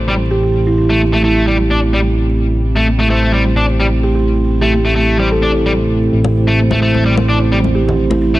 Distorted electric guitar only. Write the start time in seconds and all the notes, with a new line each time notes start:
0.08 G3
0.90 A3
1.13 A3
1.24 A3
1.47 G3
1.70 D4
1.93 G3
2.76 A3
2.99 A3
3.10 A3
3.33 G3
3.56 D4
3.80 G3
4.61 A3
4.85 A3
4.96 A3
5.19 G3
5.42 D4
5.66 G3
6.47 A3
6.71 A3
6.82 A3
7.05 G3
7.29 D4
7.52 G3
8.34 A3